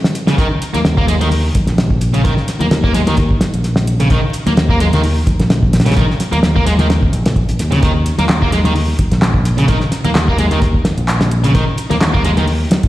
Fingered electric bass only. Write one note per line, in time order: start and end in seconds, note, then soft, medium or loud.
0.74 0.81 D#2 medium
0.85 1.48 D#2 medium
1.67 2.29 A#1 medium
2.60 2.67 D#2 medium
2.71 3.34 D#2 medium
3.54 4.16 A#1 loud
4.47 4.53 D#2 loud
4.57 5.20 D#2 medium
5.39 6.02 A#1 loud
6.32 6.39 D#2 loud
6.43 7.13 D#2 medium
7.13 7.41 A#1 medium
7.49 7.55 A#1 medium
7.60 8.11 D#2 medium
8.19 8.25 D#2 loud
8.29 8.92 D#2 medium
9.12 9.74 A#1 loud
10.05 10.11 D#2 loud
10.15 10.79 D#2 medium
10.98 11.60 A#1 loud
11.91 11.97 D#2 loud
12.01 12.65 D#2 medium
12.84 12.88 A#1 loud